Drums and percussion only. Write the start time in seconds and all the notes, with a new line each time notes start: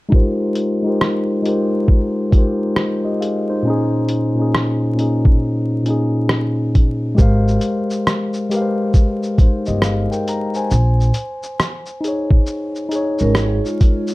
0.12 kick
0.55 closed hi-hat
1.01 cross-stick
1.45 closed hi-hat
1.88 kick
2.32 kick, closed hi-hat
2.76 cross-stick
3.22 closed hi-hat
4.09 closed hi-hat
4.55 cross-stick
4.99 closed hi-hat
5.25 kick
5.86 closed hi-hat
6.29 cross-stick
6.75 kick, closed hi-hat
7.18 kick, shaker
7.48 shaker
7.61 closed hi-hat, shaker
7.90 shaker
8.07 cross-stick, shaker
8.34 shaker
8.51 closed hi-hat, shaker
8.94 kick, shaker
9.23 shaker
9.38 kick, closed hi-hat, shaker
9.66 shaker
9.82 cross-stick, shaker
10.13 shaker
10.28 closed hi-hat, shaker
10.54 shaker
10.71 shaker
11.01 shaker
11.14 closed hi-hat, shaker
11.43 shaker
11.60 cross-stick, shaker
11.86 shaker
12.04 closed hi-hat, shaker
12.31 kick
12.47 shaker
12.75 shaker
12.91 closed hi-hat, shaker
13.19 shaker
13.35 cross-stick, shaker
13.66 shaker
13.81 kick, closed hi-hat, shaker
14.07 shaker